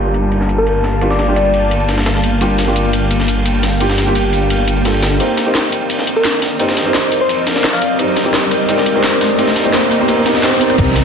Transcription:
Already playing: G1 G3 A#3 D4 F4 G4 F5 A5
0.14 closed hi-hat, ride
0.32 closed hi-hat, ride
0.41 snare
0.49 closed hi-hat, ride
0.58 A#4
0.67 closed hi-hat, ride
0.84 snare, closed hi-hat, open hi-hat
1.01 G3 A#3 D4 F4 G4, closed hi-hat, ride
1.10 D5, snare
1.19 snare, closed hi-hat, ride
1.27 G3 A#3 D4 F4 G4
1.36 D5, closed hi-hat, ride
1.54 open hi-hat, ride
1.71 closed hi-hat, ride
1.89 snare, closed hi-hat, ride
1.98 snare
2.06 snare, closed hi-hat, ride
2.15 snare
2.24 closed hi-hat, ride
2.41 G3 A#3 D4 F4 G4 G5, closed hi-hat, ride
2.58 snare, closed hi-hat, ride
2.66 G3 A#3 D4 F4 G4
2.76 closed hi-hat, ride
2.93 closed hi-hat, ride
3.11 closed hi-hat, ride
3.20 snare
3.28 closed hi-hat, ride
3.46 closed hi-hat, ride
3.63 snare, closed hi-hat, open hi-hat
3.80 G3 A#3 D4 F4 G4, closed hi-hat, ride
3.90 snare
3.98 snare, closed hi-hat, ride
4.06 G3 A#3 D4 F4 G4
4.15 closed hi-hat, ride
4.33 open hi-hat, ride
4.50 closed hi-hat, ride
4.68 closed hi-hat, ride
4.85 G3 A#3 D4 F4 A4, snare, closed hi-hat, ride
4.94 ride
5.03 snare, closed hi-hat, ride
5.20 C4 D#4 G4 A#4 C5 D5 D#5, closed hi-hat, ride, riser
5.37 snare, closed hi-hat, ride
5.45 C4 D#4 G4 A#4 C5
5.55 snare, closed hi-hat, ride
5.72 closed hi-hat, ride
5.90 closed hi-hat, ride
5.99 snare
6.07 closed hi-hat, ride
6.16 A#4
6.25 snare, closed hi-hat, ride
6.42 snare, closed hi-hat, open hi-hat
6.59 C4 D#4 G4 A#4 C5, closed hi-hat, ride
6.69 snare
6.77 snare, closed hi-hat, ride
6.85 C4 D#4 G4 A#4 C5
6.94 snare, closed hi-hat, ride
7.12 closed hi-hat, ride
7.21 C5
7.29 closed hi-hat, ride
7.47 snare, closed hi-hat, ride
7.56 snare
7.64 snare, closed hi-hat, ride
7.73 F5, snare
7.82 F5, closed hi-hat, ride
7.99 C4 D#4 G4 A#4 C5, closed hi-hat, ride, cabasa
8.17 snare, closed hi-hat, ride
8.24 C4 D#4 G4 A#4 C5, cabasa
8.34 snare, closed hi-hat, ride, cabasa
8.51 cross-stick, closed hi-hat, ride, cabasa
8.68 C4 D#4 G4 A#4 C5, closed hi-hat, ride, cabasa
8.78 snare
8.86 closed hi-hat, ride
8.94 C4 D#4 G4 A#4 C5
9.04 snare, closed hi-hat, ride, cabasa
9.21 cross-stick, snare, closed hi-hat, open hi-hat
9.30 cabasa
9.38 C4 D#4 G4 A#4 C5, closed hi-hat, ride, cabasa
9.48 snare
9.56 snare, closed hi-hat, ride
9.64 C4 D#4 G4 A#4 C5, cabasa
9.73 C4 D#4 G4 A#4 C5, snare, closed hi-hat, ride, cabasa
9.91 cross-stick, open hi-hat, ride, cabasa
9.99 C4 D#4 G4 A#4 C5
10.08 C4 D#4 G4 A#4 C5, closed hi-hat, ride, cabasa
10.25 C4 D#4 G4 A#4 C5, snare, closed hi-hat, ride
10.35 cross-stick, snare
10.43 C4 D#4 G4 A#4 C5, snare, closed hi-hat, ride, cabasa
10.52 cross-stick, snare
10.60 C4 D#4 G4 A#4 C5, closed hi-hat, ride
10.70 cross-stick, cabasa
10.78 C2 A#3 C4 D#4 G4 A#4 C5 D5, kick, closed hi-hat, crash, ride, impact, cabasa
10.96 snare, closed hi-hat, ride

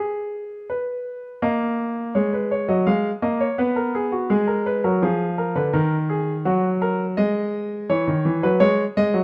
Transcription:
Already playing: G#4
0.70 B4
1.42 A#3 D#5
2.15 G#3 C#5
2.33 B4
2.51 C#5
2.69 F#3 D#5
2.87 G#3 F5
3.22 A#3 D#5
3.40 C#5
3.58 B3 B4
3.76 A#4
3.95 G#4
4.12 F#4
4.30 G#3 G#4
4.47 A#4
4.66 B4
4.84 F#3 A#4
5.02 F3 G#4
5.38 A#4
5.55 D3 B4
5.73 D#3 A#4
6.09 G#4
6.45 F#3 F#4
6.82 A#4
7.17 G#3 D#5
7.89 E3 C#5
8.07 D#3
8.25 E3
8.43 F#3 B4
8.60 G#3 C#5
8.97 G#3 D#5
9.14 F#3

